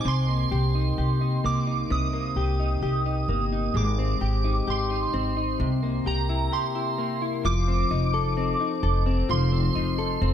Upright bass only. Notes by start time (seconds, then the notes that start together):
0.05 C2
0.52 C2
0.98 C2
1.44 C2
1.90 C2
2.36 C2
2.82 C2
3.28 G1
3.74 G#1
4.21 G#1
4.67 G#1
5.14 G#1
5.60 C2
6.06 C2
7.45 F1
7.91 F1
8.83 F1
9.29 F1
9.76 F1
10.22 F1